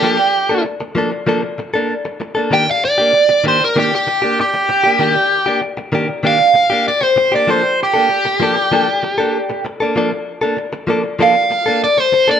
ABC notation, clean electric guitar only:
X:1
M:4/4
L:1/16
Q:1/4=97
K:Gm
V:1 name="Clean electric guitar"
[F,B,DA] z2 [B,DA] z2 [F,B,DA] z [F,B,DA] z2 [B,DA] z3 [B,DA] | [E,B,DG] z2 [B,DG] z2 [E,B,DG] z [E,B,DG] z2 [B,DG] z3 [B,DG] | [E,B,DG] z2 [B,DG] z2 [E,B,DG] z [E,B,DG] z2 [B,DG] z3 [B,DG] | [F,B,DA] z2 [B,DA] z2 [F,B,DA] z [F,B,DA] z2 [B,DA] z3 [B,DA] |
[F,B,DA] z2 [B,DA] z2 [F,B,DA] z [F,B,DA] z2 [B,DA] z3 [B,DA] |]